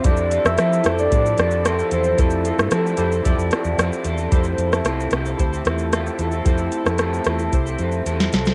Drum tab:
HH |x-x-x-x-x-x-x-x-|x-x-x-x-x-x-x-x-|x-x-x-x-x-x-x-x-|x-x-x-x-x-x-x-x-|
SH |xxxxxxxxxxxxxxxx|xxxxxxxxxxxxxxxx|xxxxxxxxxxxxxxxx|xxxxxxxxxxxxxxxx|
SD |---rr-r---r-r---|---rr-----r-r---|---rr-r---r-r---|---rr-r------ooo|
BD |o-------o-------|o-------o-------|o-------o-------|o-------o-------|